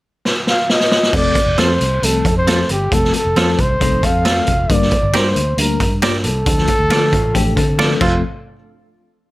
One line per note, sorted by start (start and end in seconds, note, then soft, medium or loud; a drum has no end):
0.25 snare medium
0.47 0.73 F5 medium
0.47 snare medium
0.70 1.15 D#5 medium
0.70 snare medium
0.80 snare medium
0.91 snare loud
1.03 snare medium
1.13 1.32 F1 loud
1.13 1.37 F3 medium
1.13 1.38 A3 medium
1.13 1.38 C4 medium
1.13 1.38 A4 loud
1.13 1.61 D5 loud
1.13 kick loud
1.13 crash medium
1.35 kick medium
1.35 closed hi-hat medium
1.46 1.56 F1 medium
1.57 1.76 F2 medium
1.57 1.82 F3 medium
1.57 1.82 A3 medium
1.57 1.82 C4 medium
1.57 1.72 C4 medium
1.57 1.72 F4 medium
1.57 1.83 A4 medium
1.57 1.72 A4 medium
1.57 2.06 C5 medium
1.57 snare medium
1.57 closed hi-hat medium
1.81 1.99 C2 medium
1.81 closed hi-hat medium
2.02 2.21 C2 medium
2.02 2.27 F3 medium
2.02 2.27 A3 medium
2.02 2.28 C4 medium
2.02 2.28 A4 medium
2.02 2.37 A4 medium
2.02 closed hi-hat medium
2.25 2.62 F2 medium
2.25 kick medium
2.25 closed hi-hat medium
2.37 2.72 C5 medium
2.47 2.71 F3 medium
2.47 2.72 A3 medium
2.47 2.72 C4 medium
2.47 2.61 C4 medium
2.47 2.61 F4 medium
2.47 2.72 A4 medium
2.47 2.62 A4 medium
2.47 snare loud
2.47 closed hi-hat medium
2.69 2.88 G1 medium
2.69 2.95 G4 medium
2.69 closed hi-hat medium
2.91 3.10 F1 loud
2.91 3.16 F3 medium
2.91 3.16 A3 medium
2.91 3.16 C4 medium
2.91 3.17 A4 medium
2.91 3.15 A4 medium
2.91 kick loud
2.91 closed hi-hat medium
3.04 snare soft
3.13 3.62 A4 medium
3.13 closed hi-hat medium
3.25 3.34 F1 medium
3.36 3.54 F2 medium
3.36 3.61 F3 medium
3.36 3.61 A3 medium
3.36 3.61 C4 medium
3.36 3.50 C4 medium
3.36 3.50 F4 medium
3.36 3.51 A4 medium
3.36 3.61 C5 medium
3.36 snare loud
3.36 closed hi-hat medium
3.59 3.77 C2 medium
3.59 4.07 C5 medium
3.59 kick medium
3.59 closed hi-hat medium
3.80 3.99 C2 medium
3.80 4.05 F3 medium
3.80 4.05 A3 medium
3.80 4.05 C4 medium
3.80 4.02 D#4 medium
3.80 4.05 A4 medium
3.80 4.02 C5 medium
3.80 kick medium
3.80 closed hi-hat medium
4.03 4.40 F2 medium
4.03 4.24 C4 medium
4.03 4.24 A4 medium
4.03 4.74 F5 loud
4.03 kick medium
4.03 closed hi-hat medium
4.25 4.50 F3 medium
4.25 4.67 A3 medium
4.25 4.50 A3 medium
4.25 4.39 C4 medium
4.25 4.50 C4 medium
4.25 4.67 F4 medium
4.25 4.39 F4 medium
4.25 4.50 A4 medium
4.25 4.39 A4 medium
4.25 snare loud
4.25 closed hi-hat medium
4.47 4.66 F1 medium
4.47 kick medium
4.47 closed hi-hat medium
4.70 4.88 G1 loud
4.70 4.94 G3 medium
4.70 4.94 A#3 medium
4.70 4.94 D4 medium
4.70 4.95 A#4 medium
4.70 5.18 D5 medium
4.70 kick loud
4.70 closed hi-hat medium
4.82 snare soft
4.91 kick medium
4.91 closed hi-hat medium
5.03 5.12 G1 loud
5.14 5.32 G2 medium
5.14 5.38 G3 medium
5.14 5.38 A#3 medium
5.14 5.39 D4 medium
5.14 5.27 G4 medium
5.14 5.28 A#4 medium
5.14 5.39 A#4 medium
5.14 5.59 C5 medium
5.14 5.28 D5 medium
5.14 finger snap medium
5.14 snare medium
5.14 closed hi-hat medium
5.36 5.54 D2 medium
5.36 closed hi-hat medium
5.57 5.76 D2 loud
5.57 5.82 G3 medium
5.57 5.83 A#3 medium
5.57 5.83 D4 medium
5.57 5.83 A#4 medium
5.57 5.96 A#4 medium
5.57 closed hi-hat medium
5.80 6.26 G2 medium
5.80 kick medium
5.80 closed hi-hat medium
6.02 6.27 G3 medium
6.02 6.27 A#3 medium
6.02 6.27 D4 medium
6.02 6.16 G4 medium
6.02 6.16 A#4 medium
6.02 6.27 A#4 medium
6.02 6.17 D5 medium
6.02 finger snap medium
6.02 snare loud
6.02 closed hi-hat medium
6.24 6.43 C2 medium
6.24 7.76 A4 loud
6.24 closed hi-hat medium
6.46 6.65 D2 medium
6.46 6.71 F3 medium
6.46 6.71 A3 medium
6.46 6.71 D4 medium
6.46 6.71 A4 medium
6.46 kick loud
6.46 closed hi-hat medium
6.58 snare soft
6.67 kick medium
6.67 closed hi-hat medium
6.79 6.88 D2 medium
6.90 7.14 D3 medium
6.90 7.15 F3 medium
6.90 7.15 A3 medium
6.90 7.15 D4 medium
6.90 7.04 F4 medium
6.90 7.16 A4 medium
6.90 7.05 A4 medium
6.90 7.05 D5 medium
6.90 finger snap medium
6.90 snare medium
6.90 closed hi-hat medium
7.13 7.31 A1 medium
7.13 7.34 A3 medium
7.13 7.34 F4 medium
7.13 kick medium
7.13 closed hi-hat medium
7.34 7.53 A1 medium
7.34 7.59 F3 medium
7.34 7.59 A3 medium
7.34 7.59 D4 medium
7.34 7.56 G4 medium
7.34 7.60 A4 medium
7.34 kick medium
7.34 closed hi-hat medium
7.56 7.94 D3 medium
7.56 7.99 C4 medium
7.56 7.98 A4 medium
7.56 kick medium
7.56 closed hi-hat medium
7.79 8.00 F3 medium
7.79 8.00 A3 medium
7.79 8.01 D4 medium
7.79 7.92 F4 medium
7.79 7.93 A4 medium
7.79 8.00 A4 medium
7.79 7.93 D5 medium
7.79 finger snap medium
7.79 snare medium
8.01 8.22 F1 medium
8.01 8.22 F3 medium
8.01 8.22 A3 medium
8.01 8.14 C4 medium
8.01 8.21 C4 medium
8.01 8.15 F4 medium
8.01 8.22 F4 medium
8.01 8.22 A4 medium
8.01 8.15 A4 medium
8.01 finger snap medium
8.01 kick loud
8.01 crash medium